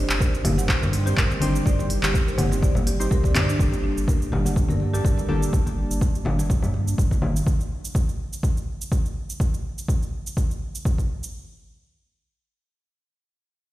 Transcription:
Already playing: analog synth pad D#3 G3 C4 G4 C5, synth keys C4 D#4 G4 C5
0.04 kalimba C5
0.09 analog synth bass G1, clap, shaker
0.20 kalimba A#4, marimba A#4, kick, muted conga, shaker
0.35 shaker
0.44 analog synth bass G1, marimba G4, kalimba A#4, mid tom, open hi-hat, high conga, low conga
0.58 marimba F#5, muted conga, shaker
0.69 kalimba C5, kick, clap, shaker
0.82 analog synth bass G2, marimba A#4, high conga, shaker
0.93 open hi-hat, muted conga
1.06 synth keys C4 D#4 G4 C5, marimba G4, shaker
1.17 analog synth bass G1, marimba A#4, kick, clap, shaker
1.30 muted conga, shaker
1.40 analog synth bass G1, synth keys C4 D#4 G4 C5, marimba D4, open hi-hat, high conga
1.55 shaker
1.66 analog synth bass G1, synth keys C4 D#4 G4 C5, marimba D5, kick, mid tom, shaker
1.79 marimba D5, muted conga, shaker
1.90 open hi-hat
2.03 analog synth bass G1, marimba G4, clap, high conga, shaker
2.14 kick, muted conga, shaker
2.27 marimba A#4, shaker
2.38 analog synth bass G1, marimba F#5, mid tom, open hi-hat, high conga, low conga
2.52 muted conga, shaker
2.62 marimba D5, kick, shaker
2.75 analog synth bass G1, low conga, shaker
2.87 marimba G4, open hi-hat, muted conga
3.00 synth keys C4 D#4 G4 C5, marimba C5, shaker
3.11 analog synth bass D2, marimba A#4, kick, shaker
3.24 marimba D5, kick, muted conga, shaker
3.35 analog synth bass G2, synth keys C4 D#4 G4 C5, marimba D5, clap, mid tom, open hi-hat, high conga, low conga
3.48 marimba D4, shaker
3.59 analog synth bass G1, analog synth pad G3 A#3 D4 D5 A5, synth keys A#3 D4 G4 A4, marimba G4, kick, shaker
3.72 muted conga, shaker
3.84 marimba D4
3.97 analog synth bass G1, shaker
4.08 marimba A#4, kick, muted conga, shaker
4.22 shaker
4.32 analog synth bass G1, marimba G4, high conga, low conga
4.45 marimba F#5, muted conga, shaker
4.56 kick, shaker
4.68 analog synth bass G2, marimba A#4, high conga, shaker
4.80 muted conga
4.93 synth keys A#3 D4 G4 A4, marimba G4, shaker
5.05 analog synth bass G1, marimba A#4, kick, shaker
5.18 muted conga, shaker
5.29 analog synth bass G1, synth keys A#3 D4 G4 A4, marimba D4, high conga
5.43 shaker
5.53 analog synth bass G1, kick, shaker
5.67 muted conga, shaker
5.90 analog synth bass G1, shaker
6.01 kick, muted conga, shaker
6.15 shaker
6.25 analog synth bass G1, high conga, low conga
6.39 muted conga, shaker
6.50 kick, shaker
6.62 analog synth bass G2, low conga, shaker
6.74 muted conga
6.88 shaker
6.98 analog synth bass G1, kick, shaker
7.11 kick, muted conga, shaker
7.22 analog synth bass G1, high conga, low conga
7.36 shaker
7.47 kick, shaker
7.61 shaker
7.85 shaker
7.95 kick, shaker
8.09 shaker
8.33 shaker
8.43 kick, shaker
8.57 shaker
8.81 shaker
8.92 kick, shaker
9.06 shaker
9.30 shaker
9.40 kick, shaker
9.54 shaker
9.78 shaker
9.88 kick, shaker
10.03 shaker
10.27 shaker
10.37 kick, shaker
10.51 shaker
10.75 shaker
10.85 kick, shaker
10.98 kick, shaker
11.23 shaker

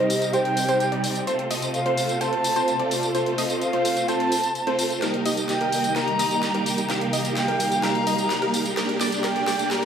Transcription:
Already playing: string section C3 G3 D#4 A#4, flute D#5
0.00 supersaw synth G3 C4 D#4 G4 C5, synth pluck C5
0.10 open hi-hat, tambourine
0.22 closed hi-hat, tambourine
0.33 supersaw synth G3 C4 D#4 G4 C5, synth pluck C5, flute G5, closed hi-hat, tambourine
0.45 closed hi-hat
0.57 open hi-hat, tambourine
0.69 supersaw synth G3 C4 D#4 G4 C5, synth pluck C5, closed hi-hat, tambourine
0.80 closed hi-hat, tambourine
0.92 supersaw synth G3 C4 D#4 G4 D5, synth pluck D5, closed hi-hat
1.04 open hi-hat, tambourine
1.15 closed hi-hat, tambourine
1.27 supersaw synth A3 C4 F4 A4 C5, string section A3 F4 C5, synth pluck C5, closed hi-hat, tambourine
1.39 closed hi-hat
1.51 supersaw synth A3 C4 F4 A4 D#5, synth pluck D#5, open hi-hat, tambourine
1.62 closed hi-hat, tambourine
1.74 flute F5, closed hi-hat, tambourine
1.86 supersaw synth A3 C4 F4 A4 C5, synth pluck C5, closed hi-hat
1.97 open hi-hat, tambourine
2.09 closed hi-hat, tambourine
2.21 supersaw synth A3 C4 F4 A4 C5, synth pluck C5, flute A5, closed hi-hat, tambourine
2.33 closed hi-hat
2.44 open hi-hat, tambourine
2.56 supersaw synth A3 C4 F4 A4 C5, synth pluck C5, closed hi-hat, tambourine
2.68 closed hi-hat, tambourine
2.79 supersaw synth A3 C4 F4 A4 D5, synth pluck D5, closed hi-hat
2.91 open hi-hat, tambourine
3.03 closed hi-hat, tambourine
3.15 supersaw synth A3 C4 F4 A4 C5, synth pluck C5, closed hi-hat, tambourine
3.26 closed hi-hat
3.38 supersaw synth A3 C4 F4 A4 D#5, synth pluck D#5, open hi-hat, tambourine
3.50 closed hi-hat, tambourine
3.62 flute F5, closed hi-hat, tambourine
3.73 supersaw synth A3 C4 F4 A4 C5, synth pluck C5, closed hi-hat
3.85 open hi-hat, tambourine
3.97 closed hi-hat, tambourine
4.08 supersaw synth A3 C4 F4 A4 C5, synth pluck C5, flute A5, closed hi-hat, tambourine
4.20 closed hi-hat
4.32 open hi-hat, tambourine
4.44 closed hi-hat, tambourine
4.55 closed hi-hat, tambourine
4.67 supersaw synth A3 C4 F4 A4 C5, synth pluck C5, closed hi-hat
4.79 open hi-hat, tambourine
4.90 closed hi-hat, tambourine
5.02 string section C2 D#3 A#3 G4 D#5, supersaw synth G3 A#3 D#4 G4 A#4, synth pluck A#4, snare, closed hi-hat, tambourine, riser
5.14 closed hi-hat
5.26 supersaw synth G3 A#3 D#4 G4 D#5, synth pluck D#5, open hi-hat, tambourine
5.37 closed hi-hat, tambourine
5.49 flute G5, snare, closed hi-hat, tambourine
5.61 supersaw synth G3 A#3 D#4 G4 A#4, synth pluck A#4, closed hi-hat
5.72 open hi-hat, tambourine
5.84 closed hi-hat, tambourine
5.96 supersaw synth G3 A#3 D#4 G4 A#4, synth pluck A#4, flute A#5, snare, closed hi-hat, tambourine
6.08 closed hi-hat
6.19 supersaw synth G3 A#3 D#4 G4 D#5, synth pluck D#5, open hi-hat, tambourine
6.31 closed hi-hat, tambourine
6.43 snare, closed hi-hat, tambourine
6.54 supersaw synth G3 A#3 D#4 G4 A#4, synth pluck A#4, closed hi-hat
6.66 open hi-hat, tambourine
6.78 closed hi-hat, tambourine
6.90 supersaw synth G3 A#3 D#4 G4 A#4, synth pluck A#4, string section F5, snare, closed hi-hat, tambourine
7.01 closed hi-hat
7.13 supersaw synth G3 A#3 D#4 G4 D#5, synth pluck D#5, open hi-hat, tambourine
7.25 closed hi-hat, tambourine
7.37 flute G5, snare, closed hi-hat, tambourine
7.48 supersaw synth G3 A#3 D#4 G4 A#4, synth pluck A#4, closed hi-hat
7.60 open hi-hat, tambourine
7.72 closed hi-hat, tambourine
7.83 supersaw synth G3 A#3 D#4 G4 A#4, synth pluck A#4, flute A#5, snare, closed hi-hat, tambourine
7.95 closed hi-hat
8.07 supersaw synth G3 A#3 D#4 G4 D#5, synth pluck D#5, open hi-hat, tambourine
8.19 closed hi-hat, tambourine
8.30 snare, closed hi-hat, tambourine
8.42 supersaw synth G3 A#3 D#4 G4 A#4, synth pluck A#4, closed hi-hat
8.54 open hi-hat, tambourine
8.65 closed hi-hat, tambourine
8.77 string section D3 G4 D5, supersaw synth G3 A#3 D4 G4 A#4, synth pluck A#4, snare, closed hi-hat, tambourine
8.89 closed hi-hat
9.01 supersaw synth G3 A#3 D4 G4 D5, synth pluck D5, snare, open hi-hat, tambourine
9.12 closed hi-hat, tambourine
9.24 supersaw synth G3 A#3 D4 G4 A#4, synth pluck A#4, flute G5, snare, closed hi-hat, tambourine
9.36 closed hi-hat
9.47 supersaw synth G3 A#3 D4 G4 D5, synth pluck D5, snare, open hi-hat, tambourine
9.59 closed hi-hat, tambourine
9.71 supersaw synth G3 A#3 D4 G4 A#4, synth pluck A#4, flute A#5, snare, closed hi-hat, tambourine

